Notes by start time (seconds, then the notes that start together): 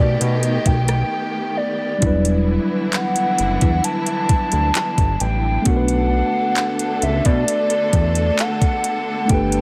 Already playing: D#3 A3 B3 D#4 G4 B4 D5
0.00 B2
0.14 D5
0.21 B2 D#5, closed hi-hat
0.43 closed hi-hat
0.66 B1 G5, kick, closed hi-hat
0.88 cross-stick, closed hi-hat
1.57 D5
1.98 E1 E3 G3 D4 E4, kick, closed hi-hat
2.03 D3 F#3 E4
2.07 B4
2.25 closed hi-hat
2.93 F#5, clap, closed hi-hat
3.16 closed hi-hat
3.38 F#1, closed hi-hat
3.61 E2, kick, closed hi-hat
3.84 D4 A5, closed hi-hat
4.06 closed hi-hat
4.29 D2, kick, closed hi-hat
4.52 D2, closed hi-hat
4.75 clap, closed hi-hat
4.98 G1, kick, closed hi-hat
5.20 A1 G5, closed hi-hat
5.62 A3 B3 A4, closed hi-hat
5.66 B1 D3 D4 F#4 F#5, kick
5.70 A#4
5.77 B4
5.88 closed hi-hat
6.56 clap, closed hi-hat
6.79 closed hi-hat
7.02 C#2 E5, closed hi-hat
7.25 B2 D5, kick, closed hi-hat
7.48 closed hi-hat
7.70 closed hi-hat
7.93 E2, kick, closed hi-hat
8.15 closed hi-hat
8.39 F#5, clap, closed hi-hat
8.62 kick, closed hi-hat
8.84 closed hi-hat
9.26 G3 A3 B3 D4, closed hi-hat
9.30 G1 G4 A4 G5, kick
9.34 B4
9.52 closed hi-hat